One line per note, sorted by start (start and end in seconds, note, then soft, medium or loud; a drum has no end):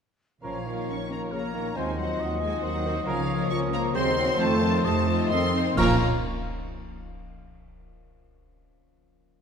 0.43 0.82 A#1 soft
0.43 1.78 A#2 soft
0.43 0.84 F3 soft
0.43 0.59 F3 soft
0.43 0.67 F3 soft
0.43 0.85 F3 soft
0.43 0.58 C#4 soft
0.43 0.59 A#4 soft
0.43 0.85 C#5 soft
0.43 1.33 C#5 soft
0.43 0.85 F5 medium
0.55 1.78 F3 soft
0.65 1.32 D#3 soft
0.65 1.08 A#3 soft
0.65 1.64 C#4 soft
0.65 1.09 F4 soft
0.65 1.09 A#4 soft
0.65 1.09 C#5 soft
0.78 1.54 F4 soft
0.87 1.27 A#1 soft
0.87 1.10 C#4 soft
0.87 1.34 A#4 soft
0.87 1.78 A#4 soft
0.87 1.10 C#6 medium
1.00 1.43 C#5 soft
1.10 1.53 A#3 soft
1.10 1.30 A#3 medium
1.10 1.30 A#3 soft
1.10 1.53 F4 soft
1.10 1.53 A#4 soft
1.10 1.53 C#5 soft
1.10 1.32 F5 soft
1.10 1.19 A#5 medium
1.22 1.78 A#5 soft
1.31 1.71 A#1 soft
1.31 1.42 C#3 soft
1.31 1.75 A#3 medium
1.31 1.76 A#4 soft
1.31 1.77 C#5 soft
1.31 1.79 F5 soft
1.31 1.76 A#5 medium
1.44 1.79 C#5 soft
1.54 1.78 D#3 soft
1.54 1.76 A#3 soft
1.54 1.76 F4 soft
1.54 1.78 F4 soft
1.54 1.76 A#4 soft
1.54 1.76 C#5 soft
1.65 1.78 C#4 soft
1.75 2.15 D#2 medium
1.75 1.92 D#3 soft
1.75 3.09 D#3 soft
1.75 2.65 F3 soft
1.75 1.98 G#3 medium
1.75 1.91 C4 soft
1.75 1.98 C4 soft
1.75 1.98 D#4 soft
1.75 1.97 F#4 soft
1.75 1.98 C5 soft
1.75 1.92 C5 soft
1.75 2.22 C5 soft
1.75 2.63 D#5 medium
1.75 1.98 G#5 medium
1.88 3.09 C4 soft
1.98 2.41 F#3 medium
1.98 2.42 F#3 soft
1.98 2.40 C4 soft
1.98 2.19 D#4 soft
1.98 2.40 D#4 soft
1.98 2.41 F#4 soft
1.98 2.41 C5 soft
1.98 2.41 F#5 medium
2.09 2.85 C5 soft
2.19 2.58 D#2 medium
2.19 2.96 D#4 soft
2.19 3.96 D#5 medium
2.31 2.52 D#5 soft
2.40 2.51 G#3 medium
2.40 2.50 G#3 medium
2.40 2.84 C4 soft
2.40 2.84 D#4 soft
2.40 2.83 F#4 medium
2.40 2.83 C5 soft
2.40 2.62 G#5 medium
2.40 2.63 C6 soft
2.53 2.74 D#5 soft
2.62 3.01 D#2 medium
2.62 2.85 D#3 medium
2.62 3.05 F#3 medium
2.62 3.06 F#3 medium
2.62 3.08 C5 medium
2.62 3.06 F#5 medium
2.62 3.09 C6 soft
2.75 3.09 D#5 soft
2.84 2.95 D#3 medium
2.84 3.07 C4 soft
2.84 3.07 D#4 soft
2.84 3.06 F#4 medium
2.84 3.06 C5 medium
2.84 3.09 C5 soft
2.97 3.09 D#4 soft
3.06 3.45 C#2 medium
3.06 3.97 C#3 medium
3.06 3.22 F3 medium
3.06 3.50 F3 medium
3.06 3.51 F3 medium
3.06 3.22 C#4 medium
3.06 3.22 A#4 medium
3.06 3.50 C#5 medium
3.06 3.50 F5 medium
3.19 3.97 A#3 soft
3.28 3.71 A#3 medium
3.28 3.97 C#4 soft
3.28 3.71 F4 medium
3.28 3.72 A#4 medium
3.28 3.72 C#5 medium
3.41 3.97 F4 medium
3.50 3.90 C#2 medium
3.50 3.96 F3 medium
3.50 3.73 C#4 medium
3.50 4.42 A#4 medium
3.50 3.97 A#4 medium
3.50 3.58 C#6 medium
3.62 3.97 C#5 medium
3.72 3.94 A#3 medium
3.72 3.94 F4 medium
3.72 3.95 A#4 medium
3.72 3.95 C#5 medium
3.72 3.97 F5 medium
3.72 3.81 A#5 medium
3.84 3.97 A#5 medium
3.94 4.34 D#2 medium
3.94 4.41 D#3 medium
3.94 4.11 F#3 medium
3.94 4.19 G#3 medium
3.94 4.38 C4 loud
3.94 4.38 C4 medium
3.94 4.10 C4 medium
3.94 4.15 C4 soft
3.94 4.15 D#4 medium
3.94 4.15 F#4 medium
3.94 4.38 C5 medium
3.94 4.10 C5 medium
3.94 4.15 C5 medium
3.94 4.39 C6 loud
4.06 4.60 D#4 medium
4.16 4.41 F#3 medium
4.16 4.49 C4 medium
4.16 4.39 C4 medium
4.16 4.39 D#4 medium
4.16 4.39 F#4 medium
4.16 4.39 C5 medium
4.28 4.41 F#4 medium
4.38 4.79 F2 loud
4.38 4.55 D#3 medium
4.38 7.20 F3 medium
4.38 4.63 F3 medium
4.38 4.84 A3 medium
4.38 4.55 C4 medium
4.38 4.84 A4 medium
4.38 4.86 C5 medium
4.38 4.55 C5 medium
4.38 4.83 A5 loud
4.50 5.79 C4 medium
4.61 4.86 D#3 medium
4.61 5.07 C4 medium
4.61 4.83 D#4 medium
4.61 5.07 D#4 medium
4.61 5.06 F4 medium
4.61 5.06 C5 medium
4.73 5.53 C5 medium
4.84 5.25 F2 medium
4.84 5.08 C3 medium
4.84 5.30 A3 medium
4.84 5.64 D#4 medium
4.84 5.30 C5 medium
4.84 5.30 D#5 medium
4.84 5.30 A5 loud
4.96 5.18 D#5 medium
5.07 5.32 F3 medium
5.07 5.53 C4 medium
5.07 5.53 D#4 medium
5.07 5.53 F4 medium
5.07 5.53 C5 medium
5.07 5.29 C6 medium
5.19 5.41 D#5 medium
5.29 5.72 F2 medium
5.29 5.54 D#3 medium
5.29 5.78 C4 medium
5.29 5.54 A4 medium
5.29 5.54 D#5 medium
5.29 5.76 C6 loud
5.29 5.80 C6 medium
5.42 5.80 D#5 medium
5.54 5.78 C4 medium
5.54 5.78 D#4 medium
5.54 5.76 F4 medium
5.54 5.80 C5 medium
5.54 5.78 C5 medium
5.66 5.80 D#4 medium
5.73 6.04 A#2 medium
5.73 6.04 A#3 medium
5.73 6.04 C#4 medium
5.77 6.04 A#1 loud
5.77 5.98 F3 medium
5.77 6.04 A#3 medium
5.77 5.98 A#3 medium
5.77 6.04 A#3 medium
5.77 5.97 C#4 medium
5.77 6.04 F4 medium
5.77 5.98 A#4 medium
5.77 6.04 A#4 medium
5.77 6.04 C#5 medium
5.77 5.97 F5 medium
5.77 6.04 A#5 loud
5.77 6.04 C#6 medium
5.77 concert bass drum medium
5.77 crash medium